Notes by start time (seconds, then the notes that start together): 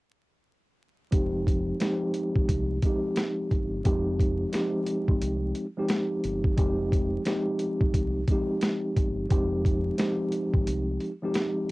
1.11 F1 F3 G#3 C4 D#4 G4, kick, closed hi-hat
1.47 kick, closed hi-hat
1.80 F3 G#3 C4 D#4 G4, snare, closed hi-hat
2.14 closed hi-hat
2.35 G#1, kick
2.49 C2, kick, closed hi-hat
2.82 F3 G#3 C4 D#4, kick, closed hi-hat
2.86 G4
3.16 snare, closed hi-hat
3.51 G1, kick, closed hi-hat
3.84 F1 F3 G#3 C4 D#4 G4, kick, closed hi-hat
4.19 kick, closed hi-hat
4.52 F3 G#3 C4 D#4 G4, snare, closed hi-hat
4.86 closed hi-hat
5.08 G#1, kick
5.22 C2, closed hi-hat
5.55 closed hi-hat
5.77 F3 G#3 C4 D#4 G4
5.89 snare, closed hi-hat
6.24 G1, closed hi-hat
6.44 kick
6.56 F1 F3 G#3 C4 D#4 G4, kick, closed hi-hat
6.92 kick, closed hi-hat
7.25 F3 G#3 C4 D#4 G4, snare, closed hi-hat
7.59 closed hi-hat
7.81 G#1, kick
7.94 C2, kick, closed hi-hat
8.28 F3 G#3 C4 D#4, kick, closed hi-hat
8.32 G4
8.61 snare, closed hi-hat
8.97 G1, kick, closed hi-hat
9.29 F1 F3 G#3 C4 D#4 G4, kick, closed hi-hat
9.65 kick, closed hi-hat
9.98 F3 G#3 C4 D#4 G4, snare, closed hi-hat
10.32 closed hi-hat
10.54 G#1, kick
10.67 C2, closed hi-hat
11.00 closed hi-hat
11.22 F3 G#3 C4 D#4 G4
11.34 snare, closed hi-hat